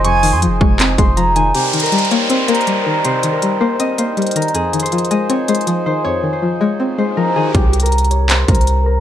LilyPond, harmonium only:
\new Staff \with { instrumentName = "Harmonium" } { \time 4/4 \key c \phrygian \tempo 4 = 160 << { <ees' c''>1 | <ees' c''>1~ | <ees' c''>1~ | <ees' c''>1~ |
<ees' c''>1 | r1 | } \\ { <f aes'>1 | <g bes'>1~ | <g bes'>1 | <f aes'>1~ |
<f aes'>1 | r1 | } >> }